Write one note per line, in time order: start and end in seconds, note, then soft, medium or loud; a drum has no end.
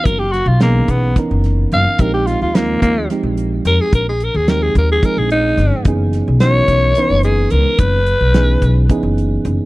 0.00 0.24 E3 medium
0.00 0.24 B3 medium
0.00 0.24 C#4 medium
0.00 0.24 D#4 medium
0.00 0.24 F#4 medium
0.05 0.40 F#1 medium
0.05 0.21 A#4 medium
0.05 kick loud
0.05 closed hi-hat medium
0.19 0.34 G4 medium
0.32 0.49 F#4 medium
0.32 snare soft
0.32 closed hi-hat medium
0.46 0.81 B1 medium
0.46 0.60 F4 medium
0.60 1.12 E3 medium
0.60 0.92 A#3 medium
0.60 1.12 B3 medium
0.60 1.12 C#4 medium
0.60 1.12 D#4 medium
0.60 1.12 G#4 medium
0.60 snare loud
0.60 closed hi-hat medium
0.88 1.12 B1 medium
0.88 1.16 B3 medium
0.88 kick medium
0.88 closed hi-hat medium
1.16 2.00 E3 medium
1.16 2.00 B3 medium
1.16 2.00 C#4 medium
1.16 2.00 D#4 medium
1.16 2.01 A#4 medium
1.16 kick loud
1.16 snare soft
1.16 closed hi-hat medium
1.31 1.65 F#1 medium
1.44 snare soft
1.44 closed hi-hat medium
1.72 1.84 F#1 loud
1.72 2.03 F5 medium
1.72 closed hi-hat medium
1.98 2.34 A#1 medium
1.98 2.50 F3 medium
1.98 2.50 G#3 medium
1.98 2.51 C4 medium
1.98 2.51 D#4 medium
1.98 2.51 G4 medium
1.98 2.13 A#4 medium
1.98 kick loud
1.98 closed hi-hat medium
2.14 2.29 G4 medium
2.27 2.40 F4 medium
2.27 snare soft
2.27 closed hi-hat medium
2.42 2.76 D#2 medium
2.42 2.57 F4 medium
2.55 3.05 F3 medium
2.55 3.06 G#3 medium
2.55 2.82 A#3 medium
2.55 3.06 C4 medium
2.55 3.06 D#4 medium
2.55 3.06 F4 medium
2.55 snare loud
2.55 closed hi-hat medium
2.82 3.05 D#2 medium
2.82 3.09 A#3 medium
2.82 kick medium
2.82 closed hi-hat medium
3.10 4.12 F3 medium
3.10 4.12 G#3 medium
3.10 4.12 C4 medium
3.10 4.12 D#4 medium
3.10 4.12 G4 medium
3.10 snare soft
3.10 closed hi-hat medium
3.23 3.58 A#1 medium
3.37 closed hi-hat medium
3.65 3.77 F2 medium
3.65 3.83 A#4 medium
3.65 snare soft
3.65 closed hi-hat medium
3.81 3.93 G#4 medium
3.93 4.27 A#1 medium
3.93 4.07 A#4 medium
3.93 kick loud
3.93 closed hi-hat medium
4.09 4.26 G#4 medium
4.20 4.38 A#4 medium
4.20 closed hi-hat medium
4.34 4.69 D#2 medium
4.34 4.50 G#4 medium
4.48 4.99 F3 medium
4.48 4.99 G#3 medium
4.48 4.99 C4 medium
4.48 4.99 D#4 medium
4.48 5.00 G4 medium
4.48 4.64 A#4 medium
4.48 snare loud
4.48 closed hi-hat medium
4.62 4.75 G#4 medium
4.75 4.99 D#2 medium
4.75 4.90 A#4 medium
4.75 kick medium
4.75 closed hi-hat medium
4.92 5.07 G#4 medium
5.03 5.86 F3 medium
5.03 5.86 G#3 medium
5.03 5.87 C4 medium
5.03 5.87 D#4 medium
5.03 5.87 G#4 medium
5.03 5.20 A#4 medium
5.03 kick loud
5.03 closed hi-hat medium
5.17 5.51 A#1 medium
5.17 5.31 G#4 medium
5.30 5.85 D#4 medium
5.30 closed hi-hat medium
5.57 5.69 G1 medium
5.57 snare soft
5.57 closed hi-hat medium
5.85 6.20 F#1 medium
5.85 6.37 E3 medium
5.85 6.37 B3 medium
5.85 6.37 C#4 medium
5.85 6.37 D#4 medium
5.85 6.38 G#4 medium
5.85 kick loud
5.85 closed hi-hat medium
6.13 snare soft
6.13 closed hi-hat medium
6.28 6.62 B1 medium
6.40 6.91 E3 medium
6.40 6.92 B3 medium
6.40 6.92 C#4 medium
6.40 6.92 D#4 medium
6.40 6.92 F#4 medium
6.40 7.21 C#5 loud
6.40 snare loud
6.40 closed hi-hat medium
6.68 6.91 B1 medium
6.68 kick medium
6.68 closed hi-hat medium
6.95 7.97 E3 medium
6.95 7.98 B3 medium
6.95 7.98 C#4 medium
6.95 7.98 D#4 medium
6.95 7.98 B4 medium
6.95 closed hi-hat medium
7.10 7.45 F#1 medium
7.23 7.53 G#4 medium
7.23 closed hi-hat medium
7.50 7.63 C#2 medium
7.50 7.81 A#4 medium
7.50 closed hi-hat medium
7.78 8.13 F#1 medium
7.78 8.86 B4 loud
7.78 kick loud
7.78 closed hi-hat medium
8.06 closed hi-hat medium
8.21 8.55 B1 medium
8.34 8.85 E3 medium
8.34 8.85 B3 medium
8.34 8.85 C#4 medium
8.34 8.86 D#4 medium
8.34 8.86 G#4 medium
8.34 snare loud
8.34 closed hi-hat medium
8.62 8.85 B1 medium
8.62 kick medium
8.62 closed hi-hat medium
8.89 9.65 E3 medium
8.89 9.65 B3 medium
8.89 9.65 C#4 medium
8.89 9.65 D#4 medium
8.89 9.65 G#4 medium
8.89 kick medium
8.89 closed hi-hat medium
9.03 9.37 F#1 medium
9.18 closed hi-hat medium
9.45 9.56 F#1 medium
9.45 closed hi-hat medium